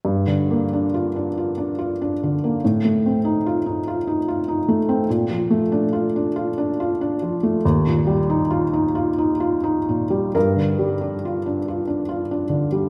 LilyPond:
\new Staff \with { instrumentName = "Felt piano" } { \time 3/4 \key g \minor \tempo 4 = 70 << { r2. | r2. | r2. | r2. |
bes'2. | } \\ { g,16 d16 bes16 d'16 f'16 d'16 f'16 d'16 f'16 d'16 d16 bes16 | a,16 a16 c'16 ees'16 f'16 ees'16 f'16 ees'16 f'16 ees'16 a16 c'16 | bes,16 f16 a16 d'16 f'16 d'16 f'16 d'16 f'16 d'16 f16 a16 | ees,16 bes,16 g16 ees'16 f'16 ees'16 f'16 ees'16 f'16 ees'16 bes,16 g16 |
g,16 d16 g16 d'16 f'16 d'16 f'16 d'16 f'16 d'16 d16 g16 | } >> }